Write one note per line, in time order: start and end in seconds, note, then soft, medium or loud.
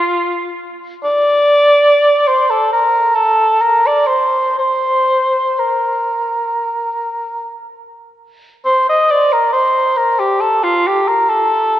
0.00 0.66 F4 medium
1.04 2.29 D5 loud
2.27 2.51 C5 medium
2.50 2.72 A4 medium
2.72 3.16 A#4 medium
3.15 3.63 A4 medium
3.61 3.88 A#4 medium
3.86 4.08 D5 medium
4.07 4.57 C5 medium
4.58 5.60 C5 medium
5.59 7.54 A#4 medium
8.65 8.86 C5 medium
8.89 9.12 D#5 medium
9.11 9.34 D5 medium
9.32 9.52 A#4 medium
9.53 9.98 C5 medium
9.97 10.21 A#4 medium
10.19 10.42 G4 medium
10.41 10.65 A4 medium
10.63 10.88 F4 medium
10.87 11.09 G4 medium
11.08 11.31 A#4 medium
11.29 11.80 A4 medium